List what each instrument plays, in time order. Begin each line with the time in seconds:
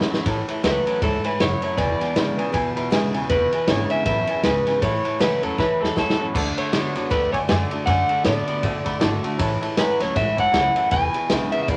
Already playing: steel-string acoustic guitar E2 C#4 E4
0.01 snare
0.10 upright bass A1, clean electric guitar A2 F#3, steel-string acoustic guitar C#4 E4, snare
0.26 upright bass A1, clean electric guitar A2 E3, steel-string acoustic guitar A2, upright piano C#5 E5 A5, kick, ride
0.48 clean electric guitar A2 E3, upright piano C#5 E5 A5, ride
0.63 upright bass C#2, clean electric guitar A2 F#3 B4, steel-string acoustic guitar E3 A3 C#4 E4, upright piano C#5 E5 F#5, snare, ride
0.86 clean electric guitar A2 F#3, upright piano C#5 E5 A5, muted upright bass stroke, ride
1.01 upright bass D2, steel-string acoustic guitar G#2, clean electric guitar A2 E3 A4, upright piano C#5 E5 A5, kick, ride
1.24 clean electric guitar A2 E3 B4, upright piano C#5 E5 G#5, ride
1.39 upright bass F#1, steel-string acoustic guitar F#2, clean electric guitar A2 F#3 C#5, upright piano C#5 E5 F#5, snare, ride
1.62 clean electric guitar A2 F#3 C#5, upright piano C#5 E5 A5, muted upright bass stroke, ride
1.77 upright bass E1, steel-string acoustic guitar E2, clean electric guitar E2 B2 D5, upright piano B4 E5 G#5, kick, ride
1.99 clean electric guitar E2 B2, upright piano B4 E5 G#5, muted upright bass stroke, snare, ride
2.15 upright bass G#1, clean electric guitar E2 C#3, steel-string acoustic guitar D3 G#3 B3 E4, upright piano B4 E5 B5, snare, ride
2.36 upright bass B1, clean electric guitar E2 C#3, steel-string acoustic guitar B3 E4, upright piano B4 E5 G#5, ride
2.52 upright bass D2, clean electric guitar E2 B2, steel-string acoustic guitar B2, upright piano B4 E5 G#5, kick, ride
2.76 upright bass B1, clean electric guitar E2 B2, upright piano B4 E5 B5, ride
2.90 upright bass A1, clean electric guitar E2 C#3, steel-string acoustic guitar D3 G#3 B3 E4, upright piano B4 E5 G#5, snare, ride
3.13 upright bass E1, clean electric guitar E2 C#3, steel-string acoustic guitar B3 E4, upright piano B4 E5 G#5, ride
3.29 upright bass E1, clean electric guitar E2 B2 B4, steel-string acoustic guitar E2, upright piano B4 E5 F#5, kick, ride
3.52 clean electric guitar E2 B2, upright piano B4 E5 G#5, ride
3.67 upright bass G#1, clean electric guitar E2 C#3 C#5, steel-string acoustic guitar D3 G#3 B3 E4, upright piano B4 E5 G#5, snare, ride
3.90 clean electric guitar E2 C#3 E5, upright piano B4 E5 G#5, muted upright bass stroke, ride
4.05 upright bass A1, clean electric guitar E2 B2 E5, steel-string acoustic guitar F#2, upright piano B4 E5 B5, kick, ride
4.27 clean electric guitar E2 B2, upright piano B4 E5 G#5, muted upright bass stroke, ride
4.43 upright bass C#2, clean electric guitar E2 C#3 B4, steel-string acoustic guitar G#2, upright piano B4 E5 G#5, snare, ride
4.66 clean electric guitar E2 C#3, upright piano B4 E5 G#5, muted upright bass stroke, snare, ride
4.81 upright bass A1, clean electric guitar A2 E3 C#5, steel-string acoustic guitar A2, upright piano C#5 E5 A5, kick, ride
5.03 clean electric guitar A2 E3, upright piano C#5 E5 A5, ride
5.19 upright bass C#2, clean electric guitar A2 F#3 B4, steel-string acoustic guitar E3 A3 C#4 E4, upright piano C#5 E5 G#5, snare, ride
5.41 upright bass E2, clean electric guitar A2 F#3 A4, steel-string acoustic guitar C#4 E4, upright piano C#5 E5 A5, ride
5.57 steel-string acoustic guitar E2, clean electric guitar A2 E3 B4, upright piano C#5 E5 A5, kick, snare
5.80 upright bass E2, clean electric guitar A2 E3 A4, upright piano C#5 E5 A5
5.84 snare
5.95 upright bass D2, clean electric guitar A2 F#3 A4, steel-string acoustic guitar E3 A3 C#4 E4, upright piano C#5 E5 A5, kick, snare
6.10 snare
6.18 upright bass A1, clean electric guitar A2 F#3, steel-string acoustic guitar C#4 E4, upright piano C#5 E5 A5
6.33 upright bass D2, clean electric guitar D3 A3, steel-string acoustic guitar D3, upright piano D5 F#5 A5, kick, crash
6.56 clean electric guitar D3 A3 C#5, upright piano D5 F#5 A5, muted upright bass stroke, ride
6.73 upright bass D2, steel-string acoustic guitar D3 A3 D4 F#4, clean electric guitar D3 B3, upright piano D5 F#5 B5, snare, ride
6.95 upright bass F#2, clean electric guitar D3 B3, steel-string acoustic guitar D4 F#4, upright piano D5 F#5 A5, snare, ride
7.10 upright bass D2, steel-string acoustic guitar A2, clean electric guitar D3 A3 B4, upright piano D5 F#5 B5, kick, ride
7.32 clean electric guitar D3 A3 C#5, upright piano D5 F#5 G#5, muted upright bass stroke, kick, ride
7.48 upright bass F#2, steel-string acoustic guitar D3 A3 D4 F#4, clean electric guitar D3 A3 D5, upright piano D5 F#5 G#5, snare, ride
7.70 clean electric guitar D3 A3, steel-string acoustic guitar D4 F#4, upright piano D5 F#5 A5, muted upright bass stroke, ride
7.86 upright bass F#2, steel-string acoustic guitar D3, clean electric guitar D3 A3 F#5, upright piano D5 F#5 G#5, kick, ride
8.09 clean electric guitar D3 A3, upright piano D5 A5, muted upright bass stroke, ride
8.24 upright bass A2, steel-string acoustic guitar D3 A3 D4 F#4, clean electric guitar D3 B3 D5, upright piano D5 F#5 A5, snare, ride
8.47 clean electric guitar D3 B3, upright piano D5 F#5 A5, muted upright bass stroke, ride
8.62 steel-string acoustic guitar A2, upright bass B2, clean electric guitar D3 A3, upright piano D5 F#5 A5, kick, ride
8.84 clean electric guitar D3 A3, upright piano D5 F#5 B5, muted upright bass stroke, kick, ride
9.00 upright bass G#1, clean electric guitar D3 A3, steel-string acoustic guitar D3 A3 D4 F#4, upright piano D5 F#5 A5, snare, ride
9.22 clean electric guitar D3 A3, steel-string acoustic guitar D4 F#4, upright piano D5 F#5 A5, ride
9.38 upright bass A1, clean electric guitar A2 E3, steel-string acoustic guitar A2, upright piano C#5 E5 A5, kick, ride
9.60 clean electric guitar A2 E3, upright piano C#5 E5 A5, ride
9.77 upright bass A1, clean electric guitar A2 F#3 B4, steel-string acoustic guitar E3 A3 C#4 E4, upright piano C#5 E5 G#5, snare, ride
9.99 upright bass D2, clean electric guitar A2 F#3 C#5, steel-string acoustic guitar C#4 E4, upright piano C#5 E5 A5, snare, ride
10.14 upright bass A1, steel-string acoustic guitar G#2, clean electric guitar A2 E3 E5, upright piano C#5 E5 F#5, kick, ride
10.36 clean electric guitar A2 E3 F#5, upright piano C#5 E5 A5, muted upright bass stroke, kick, ride
10.51 upright bass C#2, steel-string acoustic guitar F#2, clean electric guitar A2 E3, upright piano C#5 E5 A5, snare, ride
10.74 clean electric guitar A2 E3, upright piano C#5 E5 A5, muted upright bass stroke, ride
10.90 upright bass E1, clean electric guitar E2 B2 G#5, steel-string acoustic guitar E2, upright piano B4 E5 G#5, kick, ride
11.13 clean electric guitar E2 B2, upright piano B4 E5 B5, ride
11.29 upright bass B1, clean electric guitar E2 C#3, steel-string acoustic guitar D3 G#3 B3 E4, upright piano B4 E5 B5, snare, ride
11.52 clean electric guitar E2 C#3 E5, steel-string acoustic guitar B3 E4, upright piano B4 E5 F#5, ride
11.63 clean electric guitar E5
11.68 upright bass C#2, clean electric guitar E2 B2 D5, steel-string acoustic guitar B2, upright piano B4 E5 B5, kick, ride